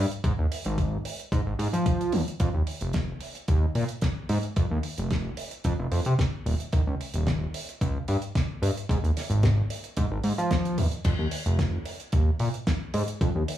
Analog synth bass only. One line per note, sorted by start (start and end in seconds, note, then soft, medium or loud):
0.24 0.33 G#2 medium
0.39 0.47 D#2 medium
0.66 0.98 G#1 medium
1.32 1.41 G#2 loud
1.46 1.54 G#1 loud
1.59 1.68 G#2 loud
1.73 2.14 F3 medium
2.13 2.22 D#2 medium
2.40 2.49 F2 loud
2.54 2.62 D#2 medium
2.81 3.14 F1 medium
3.48 3.66 D#2 medium
3.75 3.84 A#2 loud
4.29 4.38 G#2 loud
4.57 4.66 F2 medium
4.71 4.79 D#2 medium
4.98 5.30 F1 medium
5.65 5.74 F2 loud
5.79 5.87 F1 loud
5.92 6.01 F2 medium
6.06 6.14 C3 medium
6.46 6.55 D#1 medium
6.73 6.82 D#2 medium
6.87 6.95 C#2 medium
7.14 7.46 D#1 medium
7.81 7.99 C#2 loud
8.08 8.17 G2 loud
8.62 8.71 G2 loud
8.89 8.98 G#2 medium
9.03 9.11 D#2 medium
9.30 9.62 G#1 medium
9.97 10.06 G#2 loud
10.11 10.19 G#1 loud
10.24 10.33 G#2 medium
10.38 10.79 F3 medium
10.78 10.87 D#2 medium
11.05 11.14 F2 medium
11.19 11.27 D#2 medium
11.46 11.78 F1 medium
12.13 12.31 D#2 loud
12.40 12.49 A#2 loud
12.94 13.03 G#2 loud
13.21 13.30 F2 loud
13.35 13.44 D#2 medium